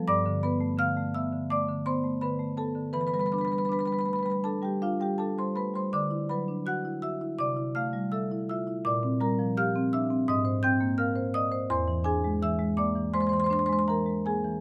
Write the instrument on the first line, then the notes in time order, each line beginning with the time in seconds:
marimba
0.08 G2 D5 D6
0.26 D3
0.43 B3 B4 B5
0.61 A3
0.78 D3 F5 F6
0.97 A3
1.14 B3 E5 E6
1.32 D3
1.50 A3 D5 D6
1.69 D3
1.86 B3 C5 C6
2.04 A3
2.21 D3 B4 B5
2.39 A3
2.57 B3 A4 A5
2.75 D3
2.93 E3 B4 B5
3.00 B4 B5
3.07 B4 B5
3.13 G3 B4 B5
3.19 B4 B5
3.26 B4 B5
3.32 D4 B4 B5
3.38 B4 B5
3.45 B4 B5
3.50 G3 B4 B5
3.58 B4 B5
3.65 B4 B5
3.69 D4 B4 B5
3.79 B4 B5
3.85 G3 B4 B5
3.92 B4 B5
3.99 B4 B5
4.05 A3 B4 B5
4.13 B4 B5
4.19 B4 B5
4.25 G3 B5
4.30 B4 B5
4.44 D4 A4 A5
4.62 G3 G4 G5
4.82 D4 F4 F5
5.00 G3 G4 G5
5.18 D4 A4 A5
5.38 G3 C5 C6
5.55 A3 B4 B5
5.74 G3 C5 C6
5.93 D3 D5 D6
6.10 E4
6.29 F#3 B4 B5
6.48 D4
6.66 F#4 F#5 F#6
6.85 E4
7.02 F#4 E5 E6
7.21 E4
7.39 C3 D5 D6
7.56 E4
7.75 A3 F5 F6
7.93 G3
8.12 A4 E5 E6
8.31 E4
8.49 F4 E5 E6
8.67 E4
8.85 A#2 D5 D6
9.03 C4
9.21 G3 A#4 A#5
9.39 F3
9.57 G4 F5 F6
9.76 C4
9.93 D4 E5 E6
10.10 C4
10.28 G#2 D#5 D#6
10.45 C5
10.63 C4 G5 G6
10.81 A#3
10.98 A#4 F5 F6
11.16 C5
11.34 D5 D#5 D#6
11.52 C5
11.70 E2 C5 C6
11.88 E3
12.04 D4 G#4 G#5
12.24 G#3
12.42 E3 E5 E6
12.59 G#3
12.77 A#3 D5 D6
12.96 E3
13.14 G#3 C5 C6
13.20 C5 C6
13.27 C5 C6
13.31 E3 C6
13.37 C5 C6
13.44 C5 C6
13.50 D4 C5 C6
13.59 C5 C6
13.66 G#3 C5 C6
13.73 C5 C6
13.79 C6
13.88 E3 A#4 A#5
14.06 G#3
14.25 A#3 G#4 G#5
14.44 E3